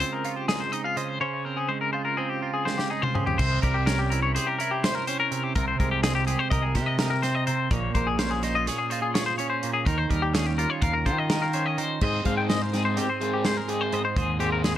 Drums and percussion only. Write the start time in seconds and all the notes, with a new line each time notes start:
0.00 closed hi-hat
0.24 closed hi-hat
0.49 snare, closed hi-hat
0.73 closed hi-hat
0.97 closed hi-hat
2.67 snare
2.79 snare
3.03 mid tom
3.15 mid tom
3.27 floor tom
3.39 kick, crash
3.63 kick, closed hi-hat
3.87 snare, closed hi-hat
4.12 closed hi-hat
4.36 closed hi-hat
4.60 closed hi-hat
4.84 snare, closed hi-hat
5.07 closed hi-hat
5.32 closed hi-hat
5.55 kick, closed hi-hat
5.80 kick, closed hi-hat
6.03 snare, closed hi-hat
6.28 closed hi-hat
6.51 kick, closed hi-hat
6.75 kick, snare, closed hi-hat
6.99 snare, closed hi-hat
7.23 snare, closed hi-hat
7.47 closed hi-hat
7.71 kick, closed hi-hat
7.95 kick, closed hi-hat
8.19 snare, closed hi-hat
8.43 snare, closed hi-hat
8.67 snare, closed hi-hat
8.91 closed hi-hat
9.15 snare, closed hi-hat
9.39 closed hi-hat
9.63 closed hi-hat
9.86 kick, closed hi-hat
10.11 kick, closed hi-hat
10.34 snare, closed hi-hat
10.59 closed hi-hat
10.82 kick, closed hi-hat
11.06 kick, closed hi-hat
11.30 snare, closed hi-hat
11.53 closed hi-hat
11.78 closed hi-hat
12.01 kick, crash
12.25 kick, closed hi-hat
12.50 snare, closed hi-hat
12.74 snare, closed hi-hat
12.97 snare, closed hi-hat
13.21 closed hi-hat
13.45 snare, closed hi-hat
13.69 closed hi-hat
13.92 closed hi-hat
14.16 kick, closed hi-hat
14.40 closed hi-hat
14.64 snare, closed hi-hat